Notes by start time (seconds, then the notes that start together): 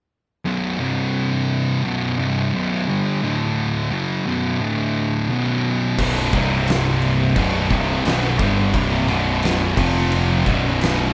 0.45 B1 F#2 B2
0.80 C2 G2 C3
1.84 B1 F#2 B2
2.18 C2 G2 C3
2.53 B1 F#2 B2
2.88 G2 D3 G3
3.23 D2 A2 D3
3.92 F#2 C#3 F#3
4.26 B1 F#2 B2
4.60 D2 A2 D3
5.29 B1 F#2 B2
5.98 B0 B1 F#2 B2, kick, crash
6.33 C1 C2 G2 C3, kick, crash
6.68 snare, crash
7.02 crash
7.36 B0 B1 F#2 B2, kick, crash
7.70 C1 C2 G2 C3, kick, crash
8.04 B0 B1 F#2 B2, snare, crash
8.39 G1 G2 D3 G3, kick, crash
8.74 C1 C2 G2 C3, kick, crash
9.08 B0 B1 F#2 B2, crash
9.43 snare, crash
9.77 F1 F2 C3 F3, kick, crash
9.97 snare
10.12 crash
10.46 B0 B1 F#2 B2, kick, crash
10.81 snare, crash